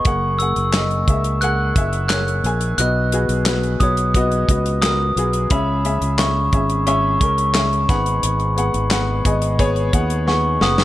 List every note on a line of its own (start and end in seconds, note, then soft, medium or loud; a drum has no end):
0.00 0.41 C#6 medium
0.05 0.53 F#1 medium
0.05 0.33 A#3 medium
0.05 0.33 G#4 medium
0.05 0.33 F#5 medium
0.05 kick loud
0.05 closed hi-hat medium
0.39 0.67 A#3 medium
0.39 0.68 G#4 medium
0.39 0.68 F#5 medium
0.39 1.44 E6 medium
0.39 closed hi-hat medium
0.56 1.04 F#1 medium
0.56 closed hi-hat soft
0.73 1.01 A#3 medium
0.73 1.01 G#4 medium
0.73 1.02 D#5 medium
0.73 snare medium
0.73 clap medium
0.73 closed hi-hat medium
0.91 closed hi-hat soft
1.07 1.72 C#2 medium
1.07 1.35 A#3 medium
1.07 1.35 G#4 medium
1.07 1.36 E5 medium
1.07 kick medium
1.07 closed hi-hat medium
1.24 closed hi-hat soft
1.41 1.69 A#3 medium
1.41 1.69 G#4 medium
1.41 1.70 F#5 medium
1.41 2.07 F#6 medium
1.41 closed hi-hat medium
1.75 2.40 F#1 medium
1.75 2.03 A#3 medium
1.75 2.03 G#4 medium
1.75 2.04 E5 medium
1.75 kick medium
1.75 closed hi-hat medium
1.93 closed hi-hat soft
2.08 2.37 A#3 medium
2.08 2.38 G#4 medium
2.08 2.38 C#5 medium
2.08 2.77 F#6 medium
2.08 snare loud
2.08 clap medium
2.08 closed hi-hat medium
2.28 closed hi-hat soft
2.44 2.76 A#1 medium
2.44 2.71 A#3 medium
2.44 2.72 G#4 medium
2.44 2.72 G#5 medium
2.44 closed hi-hat medium
2.61 closed hi-hat soft
2.78 3.25 B1 medium
2.78 3.77 B2 medium
2.78 3.05 B3 medium
2.78 3.06 F#4 medium
2.78 3.06 D#5 medium
2.78 3.83 F#6 medium
2.78 closed hi-hat medium
3.12 3.39 B3 medium
3.12 3.40 F#4 medium
3.12 3.40 G#4 medium
3.12 closed hi-hat medium
3.29 3.76 B1 medium
3.29 closed hi-hat soft
3.46 3.73 B3 medium
3.46 3.74 F#4 medium
3.46 3.74 B4 medium
3.46 snare medium
3.46 clap medium
3.46 closed hi-hat medium
3.63 closed hi-hat soft
3.80 4.44 B1 medium
3.80 4.08 B3 medium
3.80 4.08 F#4 medium
3.80 4.08 C#5 medium
3.80 4.78 D#6 medium
3.80 kick medium
3.80 closed hi-hat medium
3.97 closed hi-hat soft
4.14 4.42 B3 medium
4.14 4.42 F#4 medium
4.14 4.42 D#5 medium
4.14 kick medium
4.14 closed hi-hat medium
4.32 closed hi-hat soft
4.48 5.12 C#2 medium
4.48 4.76 B3 medium
4.48 4.76 F#4 medium
4.48 4.77 D#5 medium
4.48 kick medium
4.48 closed hi-hat medium
4.66 closed hi-hat soft
4.82 5.09 B3 medium
4.82 5.10 F#4 medium
4.82 5.10 A#4 medium
4.82 5.46 D#6 medium
4.82 snare loud
4.82 clap medium
4.82 closed hi-hat medium
5.16 5.48 B1 medium
5.16 5.44 B3 medium
5.16 5.44 F#4 medium
5.16 5.44 G#4 medium
5.16 closed hi-hat medium
5.33 closed hi-hat soft
5.50 5.98 C#2 loud
5.50 6.49 C#3 medium
5.50 5.78 C#4 medium
5.50 5.78 G#4 medium
5.50 5.78 E5 medium
5.50 6.21 B5 medium
5.50 kick loud
5.50 closed hi-hat medium
5.85 6.12 C#4 medium
5.85 6.12 G#4 medium
5.85 6.12 E5 medium
5.85 closed hi-hat medium
6.01 6.49 C#2 medium
6.01 closed hi-hat soft
6.19 6.46 C#4 medium
6.19 6.46 G#4 medium
6.19 6.46 E5 medium
6.19 6.83 C#6 medium
6.19 snare loud
6.19 clap medium
6.19 closed hi-hat medium
6.53 7.17 G#1 medium
6.53 6.80 C#4 medium
6.53 6.80 G#4 medium
6.53 6.80 E5 medium
6.53 kick medium
6.53 closed hi-hat soft
6.70 closed hi-hat soft
6.87 7.13 C#4 medium
6.87 7.14 G#4 medium
6.87 7.14 E5 medium
6.87 7.20 C#6 medium
6.87 closed hi-hat medium
7.21 7.85 C#2 medium
7.21 7.48 C#4 medium
7.21 7.48 G#4 medium
7.21 7.49 A#4 medium
7.21 7.91 C#6 medium
7.21 kick medium
7.21 closed hi-hat medium
7.38 closed hi-hat soft
7.55 7.82 C#4 medium
7.55 7.82 G#4 medium
7.55 7.82 E5 medium
7.55 snare medium
7.55 clap medium
7.55 closed hi-hat medium
7.73 closed hi-hat soft
7.89 8.21 G#1 medium
7.89 8.87 G#2 medium
7.89 8.43 B3 medium
7.89 8.44 G#4 medium
7.89 8.44 F#5 medium
7.89 9.21 B5 medium
7.89 kick loud
7.89 snare soft
7.89 closed hi-hat medium
8.06 closed hi-hat soft
8.23 8.71 G#1 medium
8.23 closed hi-hat medium
8.40 closed hi-hat soft
8.56 8.84 B3 medium
8.56 8.84 G#4 medium
8.56 8.84 F#5 medium
8.56 closed hi-hat medium
8.74 9.22 G#1 medium
8.74 closed hi-hat soft
8.91 9.18 B3 medium
8.91 9.18 G#4 medium
8.91 9.18 F#5 medium
8.91 snare medium
8.91 clap medium
8.91 closed hi-hat medium
9.25 9.89 G#1 medium
9.25 9.52 B3 medium
9.25 9.52 G#4 medium
9.25 9.53 D#5 medium
9.25 kick medium
9.25 closed hi-hat medium
9.42 closed hi-hat soft
9.59 9.86 B3 loud
9.59 9.86 G#4 medium
9.59 9.86 C#5 loud
9.59 kick medium
9.59 closed hi-hat medium
9.76 closed hi-hat soft
9.93 10.57 D#2 medium
9.93 10.20 B3 medium
9.93 10.20 G#4 medium
9.93 10.20 F#5 medium
9.93 kick medium
9.93 closed hi-hat medium
10.10 closed hi-hat soft
10.27 10.54 B3 medium
10.27 10.54 G#4 medium
10.27 10.54 F#5 medium
10.27 10.63 C#6 medium
10.27 snare soft
10.61 10.84 F#1 medium
10.61 10.84 B3 medium
10.61 10.84 G#4 medium
10.61 10.84 F#5 medium
10.61 10.84 D#6 medium
10.61 snare medium
10.78 snare medium